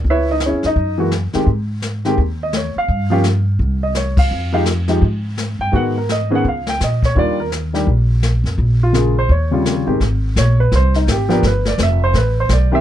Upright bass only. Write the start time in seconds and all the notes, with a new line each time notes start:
0.04 C#2
0.52 E2
0.64 F2
0.76 F#2
1.35 muted upright bass stroke
1.47 G#2
2.18 D#2
2.76 muted upright bass stroke
2.89 G2
3.59 C2
4.31 F2
5.02 G#2
5.59 G2
5.73 G#2
6.45 C#2
6.81 A#2
7.16 D#2
7.87 A#1
8.44 F2
8.58 A#1
9.29 D#2
9.87 G1
10.00 G#1
10.36 A#1
10.72 C2
11.07 G#1
11.43 G1
11.78 F1
12.13 A1
12.49 B1